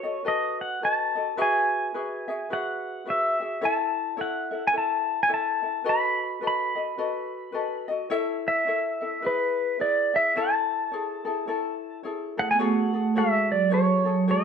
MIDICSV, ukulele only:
0, 0, Header, 1, 2, 480
1, 0, Start_track
1, 0, Key_signature, 3, "major"
1, 0, Tempo, 560224
1, 1184, Time_signature, 4, 2, 24, 8
1, 12374, End_track
2, 0, Start_track
2, 0, Title_t, "Ukulele"
2, 0, Program_c, 0, 24
2, 28, Note_on_c, 0, 75, 53
2, 37, Note_on_c, 0, 69, 50
2, 45, Note_on_c, 0, 66, 43
2, 203, Note_off_c, 0, 66, 0
2, 207, Note_off_c, 0, 69, 0
2, 210, Note_on_c, 0, 71, 64
2, 211, Note_off_c, 0, 75, 0
2, 213, Note_on_c, 0, 66, 61
2, 219, Note_on_c, 0, 69, 62
2, 221, Note_on_c, 0, 75, 70
2, 692, Note_off_c, 0, 71, 0
2, 695, Note_on_c, 0, 71, 50
2, 699, Note_off_c, 0, 69, 0
2, 700, Note_off_c, 0, 66, 0
2, 703, Note_off_c, 0, 75, 0
2, 703, Note_on_c, 0, 66, 50
2, 709, Note_on_c, 0, 69, 55
2, 714, Note_on_c, 0, 75, 54
2, 977, Note_off_c, 0, 75, 0
2, 983, Note_off_c, 0, 69, 0
2, 987, Note_on_c, 0, 75, 52
2, 990, Note_off_c, 0, 71, 0
2, 994, Note_off_c, 0, 66, 0
2, 999, Note_on_c, 0, 69, 45
2, 1008, Note_on_c, 0, 66, 40
2, 1172, Note_off_c, 0, 66, 0
2, 1176, Note_on_c, 0, 71, 80
2, 1180, Note_off_c, 0, 69, 0
2, 1180, Note_off_c, 0, 75, 0
2, 1182, Note_on_c, 0, 66, 88
2, 1184, Note_on_c, 0, 68, 94
2, 1185, Note_on_c, 0, 76, 98
2, 1655, Note_off_c, 0, 71, 0
2, 1657, Note_off_c, 0, 66, 0
2, 1662, Note_off_c, 0, 68, 0
2, 1665, Note_on_c, 0, 71, 58
2, 1668, Note_on_c, 0, 66, 54
2, 1672, Note_on_c, 0, 68, 56
2, 1677, Note_off_c, 0, 76, 0
2, 1681, Note_on_c, 0, 76, 62
2, 1942, Note_off_c, 0, 76, 0
2, 1949, Note_off_c, 0, 68, 0
2, 1953, Note_on_c, 0, 76, 66
2, 1956, Note_off_c, 0, 71, 0
2, 1958, Note_off_c, 0, 66, 0
2, 1959, Note_on_c, 0, 68, 52
2, 1969, Note_on_c, 0, 66, 58
2, 2138, Note_off_c, 0, 66, 0
2, 2143, Note_on_c, 0, 71, 58
2, 2144, Note_off_c, 0, 76, 0
2, 2148, Note_off_c, 0, 68, 0
2, 2148, Note_on_c, 0, 66, 54
2, 2157, Note_on_c, 0, 68, 59
2, 2161, Note_on_c, 0, 76, 62
2, 2607, Note_off_c, 0, 71, 0
2, 2616, Note_off_c, 0, 66, 0
2, 2618, Note_on_c, 0, 71, 41
2, 2620, Note_off_c, 0, 68, 0
2, 2626, Note_on_c, 0, 66, 53
2, 2630, Note_off_c, 0, 76, 0
2, 2630, Note_on_c, 0, 68, 47
2, 2633, Note_on_c, 0, 76, 56
2, 2903, Note_off_c, 0, 76, 0
2, 2913, Note_on_c, 0, 76, 49
2, 2914, Note_off_c, 0, 68, 0
2, 2914, Note_off_c, 0, 71, 0
2, 2918, Note_off_c, 0, 66, 0
2, 2925, Note_on_c, 0, 68, 39
2, 2932, Note_on_c, 0, 66, 38
2, 3096, Note_on_c, 0, 73, 78
2, 3099, Note_off_c, 0, 68, 0
2, 3102, Note_off_c, 0, 76, 0
2, 3103, Note_on_c, 0, 69, 88
2, 3104, Note_off_c, 0, 66, 0
2, 3108, Note_on_c, 0, 64, 77
2, 3112, Note_on_c, 0, 76, 87
2, 3561, Note_off_c, 0, 73, 0
2, 3568, Note_off_c, 0, 64, 0
2, 3572, Note_on_c, 0, 73, 59
2, 3575, Note_off_c, 0, 69, 0
2, 3577, Note_off_c, 0, 76, 0
2, 3578, Note_on_c, 0, 64, 61
2, 3583, Note_on_c, 0, 69, 64
2, 3587, Note_on_c, 0, 76, 63
2, 3853, Note_off_c, 0, 76, 0
2, 3860, Note_off_c, 0, 73, 0
2, 3862, Note_off_c, 0, 69, 0
2, 3863, Note_on_c, 0, 76, 53
2, 3872, Note_on_c, 0, 69, 54
2, 3875, Note_off_c, 0, 64, 0
2, 3884, Note_on_c, 0, 64, 44
2, 4044, Note_off_c, 0, 64, 0
2, 4045, Note_off_c, 0, 76, 0
2, 4047, Note_off_c, 0, 69, 0
2, 4049, Note_on_c, 0, 73, 56
2, 4055, Note_on_c, 0, 64, 60
2, 4057, Note_on_c, 0, 69, 60
2, 4068, Note_on_c, 0, 76, 70
2, 4515, Note_off_c, 0, 73, 0
2, 4517, Note_off_c, 0, 64, 0
2, 4525, Note_on_c, 0, 73, 52
2, 4527, Note_on_c, 0, 64, 45
2, 4530, Note_off_c, 0, 76, 0
2, 4531, Note_off_c, 0, 69, 0
2, 4535, Note_on_c, 0, 69, 56
2, 4541, Note_on_c, 0, 76, 51
2, 4805, Note_off_c, 0, 76, 0
2, 4812, Note_off_c, 0, 73, 0
2, 4813, Note_off_c, 0, 69, 0
2, 4815, Note_on_c, 0, 76, 44
2, 4821, Note_off_c, 0, 64, 0
2, 4823, Note_on_c, 0, 69, 42
2, 4831, Note_on_c, 0, 64, 40
2, 5002, Note_off_c, 0, 64, 0
2, 5006, Note_on_c, 0, 71, 73
2, 5007, Note_off_c, 0, 69, 0
2, 5015, Note_on_c, 0, 66, 88
2, 5016, Note_off_c, 0, 76, 0
2, 5018, Note_on_c, 0, 69, 95
2, 5020, Note_on_c, 0, 75, 83
2, 5481, Note_off_c, 0, 71, 0
2, 5489, Note_off_c, 0, 66, 0
2, 5491, Note_on_c, 0, 71, 53
2, 5500, Note_on_c, 0, 66, 56
2, 5501, Note_off_c, 0, 69, 0
2, 5502, Note_off_c, 0, 75, 0
2, 5504, Note_on_c, 0, 69, 58
2, 5512, Note_on_c, 0, 75, 58
2, 5776, Note_off_c, 0, 75, 0
2, 5781, Note_off_c, 0, 69, 0
2, 5786, Note_on_c, 0, 75, 58
2, 5788, Note_off_c, 0, 71, 0
2, 5791, Note_off_c, 0, 66, 0
2, 5791, Note_on_c, 0, 69, 50
2, 5801, Note_on_c, 0, 66, 47
2, 5972, Note_off_c, 0, 66, 0
2, 5973, Note_off_c, 0, 69, 0
2, 5974, Note_off_c, 0, 75, 0
2, 5976, Note_on_c, 0, 71, 52
2, 5982, Note_on_c, 0, 66, 57
2, 5985, Note_on_c, 0, 69, 67
2, 5985, Note_on_c, 0, 75, 69
2, 6435, Note_off_c, 0, 71, 0
2, 6443, Note_off_c, 0, 66, 0
2, 6445, Note_on_c, 0, 71, 61
2, 6453, Note_off_c, 0, 75, 0
2, 6454, Note_off_c, 0, 69, 0
2, 6454, Note_on_c, 0, 66, 55
2, 6463, Note_on_c, 0, 75, 51
2, 6464, Note_on_c, 0, 69, 62
2, 6741, Note_off_c, 0, 75, 0
2, 6748, Note_off_c, 0, 69, 0
2, 6750, Note_off_c, 0, 71, 0
2, 6751, Note_on_c, 0, 75, 60
2, 6754, Note_off_c, 0, 66, 0
2, 6766, Note_on_c, 0, 69, 49
2, 6774, Note_on_c, 0, 66, 50
2, 6939, Note_on_c, 0, 73, 82
2, 6940, Note_off_c, 0, 69, 0
2, 6943, Note_on_c, 0, 64, 100
2, 6946, Note_off_c, 0, 66, 0
2, 6948, Note_off_c, 0, 75, 0
2, 6950, Note_on_c, 0, 69, 97
2, 6951, Note_on_c, 0, 76, 113
2, 7416, Note_off_c, 0, 73, 0
2, 7425, Note_off_c, 0, 64, 0
2, 7426, Note_on_c, 0, 73, 59
2, 7429, Note_on_c, 0, 64, 58
2, 7430, Note_off_c, 0, 69, 0
2, 7438, Note_off_c, 0, 76, 0
2, 7440, Note_on_c, 0, 69, 56
2, 7441, Note_on_c, 0, 76, 73
2, 7708, Note_off_c, 0, 76, 0
2, 7715, Note_off_c, 0, 69, 0
2, 7715, Note_off_c, 0, 73, 0
2, 7718, Note_on_c, 0, 76, 55
2, 7722, Note_off_c, 0, 64, 0
2, 7726, Note_on_c, 0, 69, 51
2, 7736, Note_on_c, 0, 64, 47
2, 7896, Note_off_c, 0, 64, 0
2, 7898, Note_off_c, 0, 76, 0
2, 7901, Note_on_c, 0, 71, 63
2, 7907, Note_on_c, 0, 64, 61
2, 7914, Note_off_c, 0, 69, 0
2, 7918, Note_on_c, 0, 68, 57
2, 7920, Note_on_c, 0, 76, 64
2, 8381, Note_off_c, 0, 71, 0
2, 8390, Note_off_c, 0, 64, 0
2, 8391, Note_on_c, 0, 71, 50
2, 8394, Note_on_c, 0, 64, 48
2, 8395, Note_off_c, 0, 68, 0
2, 8398, Note_on_c, 0, 68, 48
2, 8405, Note_off_c, 0, 76, 0
2, 8408, Note_on_c, 0, 76, 56
2, 8678, Note_off_c, 0, 76, 0
2, 8683, Note_off_c, 0, 71, 0
2, 8684, Note_off_c, 0, 64, 0
2, 8686, Note_off_c, 0, 68, 0
2, 8688, Note_on_c, 0, 76, 52
2, 8696, Note_on_c, 0, 68, 46
2, 8702, Note_on_c, 0, 64, 42
2, 8869, Note_off_c, 0, 64, 0
2, 8873, Note_on_c, 0, 73, 83
2, 8876, Note_off_c, 0, 76, 0
2, 8880, Note_off_c, 0, 68, 0
2, 8880, Note_on_c, 0, 64, 77
2, 8886, Note_on_c, 0, 69, 85
2, 9350, Note_off_c, 0, 73, 0
2, 9353, Note_on_c, 0, 73, 54
2, 9356, Note_off_c, 0, 64, 0
2, 9366, Note_off_c, 0, 69, 0
2, 9366, Note_on_c, 0, 64, 55
2, 9368, Note_on_c, 0, 68, 65
2, 9369, Note_on_c, 0, 69, 64
2, 9627, Note_off_c, 0, 69, 0
2, 9636, Note_off_c, 0, 68, 0
2, 9637, Note_on_c, 0, 69, 61
2, 9643, Note_off_c, 0, 73, 0
2, 9645, Note_off_c, 0, 64, 0
2, 9646, Note_on_c, 0, 68, 55
2, 9655, Note_on_c, 0, 64, 52
2, 9824, Note_off_c, 0, 64, 0
2, 9829, Note_off_c, 0, 69, 0
2, 9830, Note_on_c, 0, 73, 65
2, 9834, Note_off_c, 0, 68, 0
2, 9834, Note_on_c, 0, 64, 71
2, 9842, Note_on_c, 0, 69, 76
2, 10307, Note_off_c, 0, 73, 0
2, 10310, Note_on_c, 0, 73, 49
2, 10312, Note_off_c, 0, 64, 0
2, 10322, Note_on_c, 0, 68, 52
2, 10323, Note_on_c, 0, 64, 55
2, 10328, Note_off_c, 0, 69, 0
2, 10332, Note_on_c, 0, 69, 54
2, 10592, Note_off_c, 0, 69, 0
2, 10601, Note_off_c, 0, 68, 0
2, 10601, Note_off_c, 0, 73, 0
2, 10602, Note_on_c, 0, 69, 57
2, 10607, Note_off_c, 0, 64, 0
2, 10611, Note_on_c, 0, 68, 46
2, 10618, Note_on_c, 0, 64, 44
2, 10782, Note_off_c, 0, 68, 0
2, 10787, Note_on_c, 0, 73, 91
2, 10789, Note_off_c, 0, 64, 0
2, 10791, Note_off_c, 0, 69, 0
2, 10791, Note_on_c, 0, 66, 90
2, 10793, Note_on_c, 0, 68, 96
2, 10803, Note_on_c, 0, 69, 85
2, 11073, Note_off_c, 0, 69, 0
2, 11078, Note_off_c, 0, 73, 0
2, 11080, Note_off_c, 0, 66, 0
2, 11081, Note_off_c, 0, 68, 0
2, 11083, Note_on_c, 0, 69, 52
2, 11093, Note_on_c, 0, 68, 44
2, 11100, Note_on_c, 0, 66, 45
2, 11266, Note_off_c, 0, 66, 0
2, 11270, Note_off_c, 0, 68, 0
2, 11271, Note_off_c, 0, 69, 0
2, 11271, Note_on_c, 0, 73, 70
2, 11277, Note_on_c, 0, 66, 79
2, 11280, Note_on_c, 0, 68, 71
2, 11281, Note_on_c, 0, 69, 84
2, 11734, Note_off_c, 0, 73, 0
2, 11737, Note_on_c, 0, 73, 65
2, 11739, Note_off_c, 0, 68, 0
2, 11744, Note_off_c, 0, 66, 0
2, 11748, Note_on_c, 0, 66, 60
2, 11749, Note_on_c, 0, 68, 60
2, 11751, Note_off_c, 0, 69, 0
2, 11755, Note_on_c, 0, 69, 66
2, 12026, Note_off_c, 0, 69, 0
2, 12032, Note_off_c, 0, 73, 0
2, 12036, Note_on_c, 0, 69, 59
2, 12037, Note_off_c, 0, 66, 0
2, 12038, Note_off_c, 0, 68, 0
2, 12047, Note_on_c, 0, 68, 48
2, 12054, Note_on_c, 0, 66, 46
2, 12224, Note_off_c, 0, 66, 0
2, 12225, Note_off_c, 0, 69, 0
2, 12226, Note_off_c, 0, 68, 0
2, 12232, Note_on_c, 0, 73, 65
2, 12235, Note_on_c, 0, 66, 78
2, 12236, Note_on_c, 0, 68, 62
2, 12243, Note_on_c, 0, 69, 67
2, 12374, Note_off_c, 0, 66, 0
2, 12374, Note_off_c, 0, 68, 0
2, 12374, Note_off_c, 0, 69, 0
2, 12374, Note_off_c, 0, 73, 0
2, 12374, End_track
0, 0, End_of_file